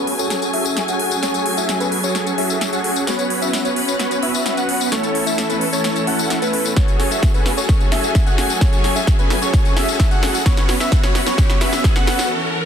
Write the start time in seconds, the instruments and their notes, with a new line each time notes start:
Already playing: string section F#3 A3 G#5, supersaw synth C#4 F#4 G#4 A4 B4, analog synth lead B4
0.07 open hi-hat
0.19 supersaw synth C#4 F#4 G#4 A4 C#5, analog synth lead C#5, closed hi-hat, tambourine
0.30 snare, closed hi-hat, tambourine
0.42 closed hi-hat, tambourine
0.53 supersaw synth C#4 F#4 G#4 A4 E5, analog synth lead E5, open hi-hat
0.65 closed hi-hat, tambourine
0.77 snare, closed hi-hat, tambourine
0.88 supersaw synth C#4 F#4 G#4 A4 F#5, analog synth lead F#5, closed hi-hat, tambourine
1.00 open hi-hat
1.11 closed hi-hat, tambourine
1.23 supersaw synth C#4 F#4 G#4 A4 C#5, analog synth lead C#5, snare, closed hi-hat, tambourine
1.34 closed hi-hat, tambourine
1.46 open hi-hat
1.57 supersaw synth C#4 F#4 G#4 A4 E5, analog synth lead E5, closed hi-hat, tambourine
1.69 snare, closed hi-hat, tambourine
1.80 supersaw synth C#4 F#4 G#4 A4 B4, analog synth lead B4, closed hi-hat, tambourine
1.92 open hi-hat
2.03 supersaw synth C#4 F#4 G#4 A4 C#5, analog synth lead C#5, closed hi-hat, tambourine
2.15 snare, closed hi-hat, tambourine
2.27 closed hi-hat, tambourine
2.38 supersaw synth C#4 F#4 G#4 A4 E5, analog synth lead E5, open hi-hat
2.50 closed hi-hat, tambourine
2.61 snare, closed hi-hat, tambourine
2.72 supersaw synth C#4 F#4 G#4 A4 F#5, analog synth lead F#5, closed hi-hat, tambourine
2.84 open hi-hat
2.96 closed hi-hat, tambourine
3.07 supersaw synth B3 C#4 F#4 B4 C#5, string section C#4 B4, analog synth lead C#5, snare, closed hi-hat, tambourine
3.19 closed hi-hat, tambourine
3.30 open hi-hat
3.42 supersaw synth B3 C#4 F#4 B4 E5, analog synth lead E5, closed hi-hat, tambourine
3.53 snare, closed hi-hat, tambourine
3.65 supersaw synth B3 C#4 F#4 B4 C#5, analog synth lead C#5, closed hi-hat, tambourine
3.76 open hi-hat
3.88 supersaw synth B3 C#4 F#4 B4 C#5, analog synth lead C#5, closed hi-hat, tambourine
3.99 snare, closed hi-hat, tambourine
4.11 closed hi-hat, tambourine
4.23 supersaw synth B3 C#4 F#4 B4 E5, analog synth lead E5, open hi-hat
4.34 closed hi-hat, tambourine
4.46 snare, closed hi-hat, tambourine
4.57 supersaw synth B3 C#4 F#4 B4 F#5, analog synth lead F#5, closed hi-hat, tambourine
4.69 open hi-hat
4.80 closed hi-hat, tambourine
4.92 string section E3 C#4 A4, supersaw synth A3 C#4 E4 A4 C#5, analog synth lead C#5, snare, closed hi-hat, tambourine
5.03 closed hi-hat, tambourine
5.15 open hi-hat
5.26 supersaw synth A3 C#4 E4 A4 E5, analog synth lead E5, closed hi-hat, tambourine
5.38 snare, closed hi-hat, tambourine
5.49 supersaw synth A3 C#4 E4 A4 B4, analog synth lead B4, closed hi-hat, tambourine
5.61 open hi-hat
5.73 supersaw synth A3 C#4 E4 A4 C#5, analog synth lead C#5, closed hi-hat, tambourine
5.84 snare, closed hi-hat, tambourine
5.96 closed hi-hat, tambourine
6.07 supersaw synth A3 C#4 E4 A4 F#5, analog synth lead F#5, open hi-hat
6.19 closed hi-hat, tambourine
6.30 snare, closed hi-hat, tambourine
6.42 supersaw synth A3 C#4 E4 A4 B4, analog synth lead B4, closed hi-hat, tambourine
6.53 open hi-hat
6.65 closed hi-hat, tambourine
6.76 string section F#3 A3 G#5, supersaw synth C#4 F#4 G#4 A4 C#5, analog synth lead C#5, kick, snare, closed hi-hat, riser
6.88 closed hi-hat, tambourine
7.00 snare, open hi-hat
7.11 supersaw synth C#4 F#4 G#4 A4 E5, analog synth lead E5, closed hi-hat, tambourine
7.23 kick, snare, closed hi-hat
7.34 supersaw synth C#4 F#4 G#4 A4 B4, analog synth lead B4, closed hi-hat, tambourine
7.46 snare, open hi-hat
7.57 supersaw synth C#4 F#4 G#4 A4 C#5, analog synth lead C#5, closed hi-hat, tambourine
7.69 kick, snare, closed hi-hat
7.80 closed hi-hat, tambourine
7.92 supersaw synth C#4 F#4 G#4 A4 E5, analog synth lead E5, snare, open hi-hat
8.03 closed hi-hat, tambourine
8.15 kick, snare, closed hi-hat, tambourine
8.26 supersaw synth C#4 F#4 G#4 A4 F#5, analog synth lead F#5, closed hi-hat, tambourine
8.38 snare, open hi-hat
8.50 closed hi-hat, tambourine
8.61 supersaw synth C#4 F#4 G#4 A4 C#5, analog synth lead C#5, kick, snare, closed hi-hat, tambourine
8.73 closed hi-hat, tambourine
8.84 snare, open hi-hat
8.96 supersaw synth C#4 F#4 G#4 A4 E5, analog synth lead E5, closed hi-hat, tambourine
9.07 kick, snare, closed hi-hat, tambourine
9.19 supersaw synth C#4 F#4 G#4 A4 B4, analog synth lead B4, closed hi-hat, tambourine
9.30 snare, open hi-hat
9.42 supersaw synth C#4 F#4 G#4 A4 C#5, analog synth lead C#5, closed hi-hat, tambourine
9.53 kick, snare, closed hi-hat, tambourine
9.65 closed hi-hat, tambourine
9.76 supersaw synth C#4 F#4 G#4 A4 E5, analog synth lead E5, snare, open hi-hat
9.88 closed hi-hat, tambourine
10.00 kick, snare, closed hi-hat
10.11 supersaw synth C#4 F#4 G#4 A4 F#5, analog synth lead F#5, closed hi-hat, tambourine
10.23 snare, open hi-hat
10.34 closed hi-hat, tambourine
10.46 string section F#3 C#4 B4, supersaw synth B3 C#4 F#4 B4 C#5, analog synth lead C#5, kick, snare, closed hi-hat
10.57 snare, closed hi-hat, tambourine
10.69 snare, open hi-hat
10.80 supersaw synth B3 C#4 F#4 B4 E5, analog synth lead E5, snare, closed hi-hat, tambourine
10.92 kick, snare, closed hi-hat, tambourine
11.03 supersaw synth B3 C#4 F#4 B4 C#5, analog synth lead C#5, snare, closed hi-hat, tambourine
11.15 snare, open hi-hat
11.26 supersaw synth B3 C#4 F#4 B4 C#5, analog synth lead C#5, snare, closed hi-hat, tambourine
11.38 kick, snare, closed hi-hat, tambourine
11.50 snare, closed hi-hat, tambourine
11.61 supersaw synth B3 C#4 F#4 B4 E5, analog synth lead E5, snare, open hi-hat
11.73 snare, closed hi-hat, tambourine
11.84 kick, snare, closed hi-hat, tambourine
11.96 supersaw synth B3 C#4 F#4 B4 F#5, analog synth lead F#5, snare, closed hi-hat, tambourine
12.07 snare, open hi-hat
12.19 snare, closed hi-hat, tambourine
12.30 string section E3 A4